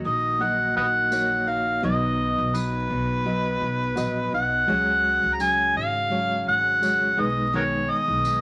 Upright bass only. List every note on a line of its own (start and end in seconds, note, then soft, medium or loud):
0.05 0.72 A#1 medium
0.77 1.79 A#1 medium
1.83 2.34 B1 loud
2.38 2.86 B1 loud
2.90 3.57 B1 medium
3.61 3.94 B1 medium
3.97 4.30 A#1 loud
4.33 4.66 B1 medium
4.68 5.19 C#2 loud
5.23 5.71 C#2 medium
5.75 6.42 G#1 medium
6.47 7.14 G#1 medium
7.17 7.85 B1 loud
8.08 8.41 B1 loud